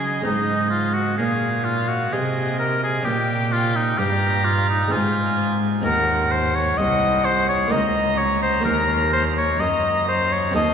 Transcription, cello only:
0.00 0.24 C#3 medium
0.27 1.21 G#2 medium
1.19 2.12 A#2 medium
2.13 3.04 C3 medium
3.06 3.97 A#2 medium
3.99 4.90 G2 medium
4.92 5.83 G#2 medium
5.86 6.77 D#2 medium
6.78 7.70 C2 medium
7.72 8.64 C#2 medium
8.66 9.58 D#2 medium
9.60 10.57 F#2 medium
10.55 10.74 D#2 medium

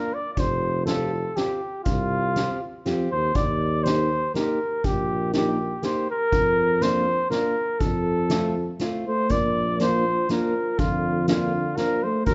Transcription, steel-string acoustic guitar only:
0.00 0.11 A#3 medium
0.00 0.11 D4 soft
0.00 0.12 F4 medium
0.87 1.10 C4 medium
0.87 1.11 F4 medium
0.87 1.11 G4 medium
1.37 1.60 C4 medium
1.37 1.60 F4 medium
1.37 1.60 G4 medium
2.36 2.59 C4 medium
2.36 2.59 F4 medium
2.36 2.60 G4 medium
2.86 3.09 C4 medium
2.86 3.09 F4 medium
2.86 3.09 G4 medium
3.85 4.09 A#3 medium
3.85 4.09 D#4 medium
3.85 4.09 G4 medium
4.34 4.58 A#3 medium
4.34 4.58 D#4 medium
4.34 4.58 G4 medium
5.33 5.57 A#3 medium
5.33 5.57 D#4 medium
5.33 5.57 G4 medium
5.82 6.06 A#3 medium
5.82 6.07 D#4 soft
5.82 6.07 G4 medium
6.81 7.05 A#3 medium
6.81 7.05 D4 medium
6.81 7.05 F4 medium
7.30 7.54 A#3 medium
7.30 7.54 D4 medium
7.30 7.54 F4 medium
8.31 8.54 A3 medium
8.31 8.54 C4 medium
8.31 8.54 F4 medium
8.80 9.04 A3 medium
8.80 9.04 C4 medium
8.80 9.04 F4 medium
9.80 10.04 A#3 medium
9.80 10.04 D4 medium
9.80 10.04 F4 medium
10.30 10.53 A#3 medium
10.30 10.53 D4 soft
10.30 10.54 F4 medium
11.29 11.52 A#3 medium
11.29 11.52 D4 medium
11.29 11.52 F4 medium
11.78 12.01 A#3 medium
11.78 12.01 D4 medium
11.78 12.01 F4 medium

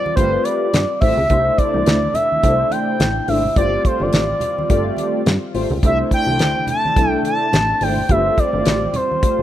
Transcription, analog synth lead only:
0.00 0.14 D5 loud
0.16 0.45 C5 loud
0.44 1.00 D5 medium
1.01 1.59 E5 loud
1.58 2.16 D5 loud
2.14 2.73 E5 loud
2.71 3.30 G5 loud
3.28 3.57 E5 medium
3.57 3.83 D5 loud
3.83 4.03 C5 medium
3.83 3.88 D5 medium
4.02 5.15 D5 loud
5.86 5.98 E5 loud
6.14 6.65 G5 loud
6.70 7.10 A5 loud
7.10 7.22 G5 loud
7.26 7.84 A5 loud
7.83 8.12 G5 loud
8.11 8.40 E5 loud
8.39 8.97 D5 loud
8.95 9.42 C5 medium

